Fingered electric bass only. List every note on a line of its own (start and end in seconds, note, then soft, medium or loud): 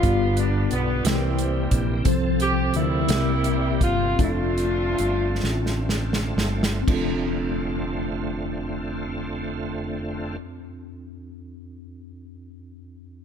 0.03 0.67 G1 medium
0.72 1.02 B1 medium
1.05 1.68 C2 medium
1.72 2.03 A#1 medium
2.06 2.70 C2 medium
2.74 3.06 D2 medium
3.09 3.77 C2 medium
3.81 4.16 G1 medium
4.19 4.96 F1 medium
4.99 5.39 G1 medium
5.43 6.33 A1 medium
6.37 6.84 G1 medium
6.88 10.37 F1 medium